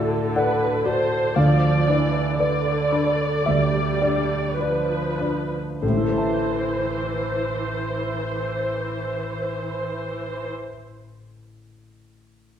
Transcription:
Already playing: grand piano A2 F#4 A4 D5 A5, harp D3 A3 F#4 D5 A5, viola section D3 A4
0.36 grand piano A4 D5 F#5, viola section B4, harp D5
0.85 grand piano F#4 D5, viola section C5, harp A5
1.36 grand piano D2 F5, harp D3, viola section F3 D5
1.87 viola section E3, harp D4, grand piano D4 D5
2.39 viola section D3 D5, grand piano B4 D5, harp D5
2.92 grand piano D4 D5, harp B5
3.46 grand piano D2 E5, harp D3, viola section G3
4.02 harp D4, grand piano D4 D5
4.59 viola section F3 B4, grand piano B4 D5, harp D5
5.20 grand piano D4 D5, harp B5
5.82 grand piano A1 A4, harp A2, viola section E3 C5
5.90 grand piano A2, harp A3
5.97 harp E4, grand piano E4
6.04 harp A4, grand piano A4
6.11 harp C5, grand piano C5
6.18 harp A5, grand piano A5

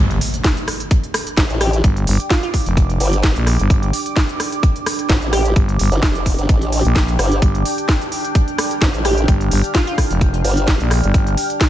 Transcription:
Already playing: fm bass G1, impact
0.00 ambient pad D4
0.11 closed hi-hat
0.18 ambient pad G4, open hi-hat
0.34 closed hi-hat
0.42 ambient pad D6, kick, snare, closed hi-hat
0.49 ambient pad G5
0.57 closed hi-hat
0.68 cross-stick, open hi-hat
0.80 closed hi-hat
0.91 kick, closed hi-hat
1.04 closed hi-hat
1.14 cross-stick, open hi-hat
1.27 closed hi-hat
1.37 wobble bass G1, kick, snare, closed hi-hat
1.50 wobble bass A1, closed hi-hat
1.61 synth pluck G4, cross-stick, open hi-hat
1.73 closed hi-hat
1.84 fm bass G1, kick, closed hi-hat
1.97 closed hi-hat
2.07 fm bass G1, open hi-hat
2.20 closed hi-hat
2.30 synth pluck F4, kick, snare, closed hi-hat
2.43 synth pluck F4, closed hi-hat
2.54 kick, open hi-hat
2.66 fm bass F1, closed hi-hat
2.77 kick, closed hi-hat
2.90 closed hi-hat
3.00 wobble bass G1, open hi-hat
3.13 closed hi-hat
3.23 kick, snare, closed hi-hat
3.36 fm bass A#1, closed hi-hat
3.47 cross-stick, open hi-hat
3.59 fm bass G1, closed hi-hat
3.70 fm bass G1, kick, closed hi-hat
3.83 closed hi-hat
3.93 open hi-hat
4.06 closed hi-hat
4.17 kick, snare, closed hi-hat
4.29 closed hi-hat
4.40 cross-stick, open hi-hat
4.52 closed hi-hat
4.63 kick, closed hi-hat
4.76 closed hi-hat
4.86 cross-stick, open hi-hat
4.99 closed hi-hat
5.10 wobble bass G1, kick, snare, closed hi-hat
5.22 wobble bass A1, closed hi-hat
5.33 synth pluck G4, cross-stick, open hi-hat
5.45 closed hi-hat
5.56 fm bass G1, kick, closed hi-hat
5.69 closed hi-hat
5.79 fm bass G1, open hi-hat
5.92 wobble bass G1, closed hi-hat
6.03 wobble bass F1, kick, snare, closed hi-hat
6.15 closed hi-hat
6.26 kick, open hi-hat
6.38 wobble bass G1, closed hi-hat
6.49 wobble bass A1, kick, closed hi-hat
6.62 closed hi-hat
6.72 open hi-hat
6.85 fm bass A#1, closed hi-hat
6.96 kick, snare, closed hi-hat
7.08 closed hi-hat
7.19 wobble bass G1, cross-stick, open hi-hat
7.32 closed hi-hat
7.42 fm bass G1, kick, closed hi-hat
7.55 closed hi-hat
7.65 open hi-hat
7.78 closed hi-hat
7.85 ambient pad F6, kick, snare, closed hi-hat
8.01 closed hi-hat
8.12 open hi-hat
8.24 closed hi-hat
8.35 kick, closed hi-hat
8.48 closed hi-hat
8.58 cross-stick, open hi-hat
8.71 closed hi-hat
8.82 wobble bass G1, kick, snare, closed hi-hat
8.94 wobble bass A1, closed hi-hat
9.05 synth pluck G4, cross-stick, open hi-hat
9.18 closed hi-hat
9.28 fm bass G1, kick, closed hi-hat
9.41 closed hi-hat
9.51 fm bass G1, open hi-hat
9.64 closed hi-hat
9.75 synth pluck F4, kick, snare, closed hi-hat
9.87 synth pluck F4, closed hi-hat
9.98 kick, cross-stick, open hi-hat
10.10 fm bass F1, closed hi-hat
10.21 kick, closed hi-hat
10.34 closed hi-hat
10.45 wobble bass G1, open hi-hat
10.57 closed hi-hat
10.68 kick, snare, closed hi-hat
10.80 fm bass A#1, closed hi-hat
10.91 cross-stick, open hi-hat
11.04 fm bass G1, closed hi-hat
11.14 fm bass G1, kick, closed hi-hat
11.27 closed hi-hat
11.37 open hi-hat
11.50 closed hi-hat
11.61 kick, snare, closed hi-hat

